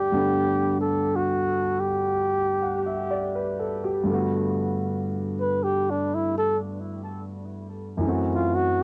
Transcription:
0.00 0.10 G2 soft
0.00 0.13 B2 soft
0.00 0.12 D3 soft
0.00 0.13 G3 soft
0.00 0.12 A3 soft
0.00 0.13 E4 soft
0.00 0.79 G4 medium
0.00 0.13 F#5 soft
0.12 4.02 G2 soft
0.12 4.05 D3 soft
0.12 4.08 A3 soft
0.12 4.09 B3 soft
0.12 4.09 D4 medium
0.81 1.17 A4 medium
1.16 1.82 F#4 medium
1.80 3.11 G4 medium
2.62 2.92 F#5 soft
2.86 3.20 E5 soft
3.11 3.56 D5 soft
3.35 3.77 B4 soft
3.59 3.90 A4 soft
3.84 4.18 G4 soft
4.04 8.00 G2 soft
4.04 8.02 D3 soft
4.09 8.01 A3 soft
4.09 8.04 B3 soft
4.14 8.06 F#4 soft
5.41 5.65 B4 medium
5.64 5.92 G4 medium
5.90 6.16 D4 medium
6.15 6.38 E4 medium
6.38 6.58 A4 medium
7.97 8.83 F#2 soft
7.97 8.83 E3 soft
8.03 8.83 A3 soft
8.03 8.83 C4 soft
8.08 8.83 F#4 soft
8.35 8.57 F4 medium
8.55 8.83 F#4 medium

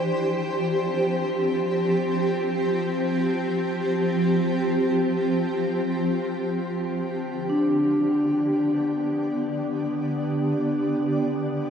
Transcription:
0.00 6.89 F3 medium
0.00 6.90 C4 medium
0.00 1.41 D4 medium
0.00 11.70 G4 medium
0.00 6.86 C5 medium
6.91 11.70 D3 medium
7.50 9.21 D4 medium
7.60 11.70 D5 medium
7.84 11.70 B3 medium

